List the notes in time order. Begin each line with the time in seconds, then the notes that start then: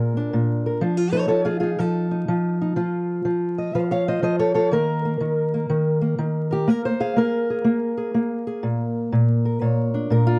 Already playing: A#2 G#4 A#4
0.17 D4
0.33 A#2
0.66 A#4
0.81 F3 D4
0.97 F4
1.12 D#4 A4 C#5
1.28 F3 A4 C#5
1.45 F4 G#4
1.60 D#4 F4 G#4
1.79 F3 A4
2.11 D#4
2.28 F3
2.61 D#4
2.76 F3 F4
3.25 F3
3.58 D#5
3.75 F3 C#5 F5
3.91 C#5 F5
4.08 F4 C5 D#5
4.22 F3 C5 D#5
4.39 A4 C#5
4.54 F4 A4 C#5
4.71 D#3 A#3 A#4
5.05 A#3
5.21 D#3
5.54 A#3
5.70 D#3
6.01 A#3
6.18 D#3
6.51 G4 A#4
6.67 A#3 A#4
6.85 C5
7.00 G#4 F5
7.16 A#3 A#4
7.50 G#4
7.64 A#3
7.97 G#4
8.14 A#3
8.47 G#4
8.63 A#2
9.12 A#2
9.45 A#4
9.61 A#2 C#5
9.94 D4
10.10 A#2 A#4
10.27 F4